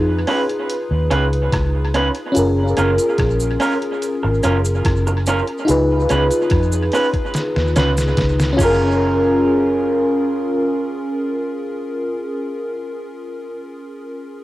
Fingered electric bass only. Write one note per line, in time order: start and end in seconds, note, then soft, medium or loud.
0.00 0.24 F2 medium
0.91 1.09 D#2 medium
1.12 1.48 C#2 medium
1.53 2.09 C#2 loud
2.37 2.73 F#1 loud
2.78 2.97 F#1 loud
3.19 3.56 A#1 medium
4.24 4.42 G#1 medium
4.45 4.81 F#1 medium
4.86 5.41 F#1 loud
5.69 6.06 C#2 loud
6.11 6.29 C#2 loud
6.51 6.88 F2 medium
7.56 7.74 D#2 medium
7.77 8.14 C#2 medium
8.18 8.55 C#2 loud
8.59 13.39 F#1 medium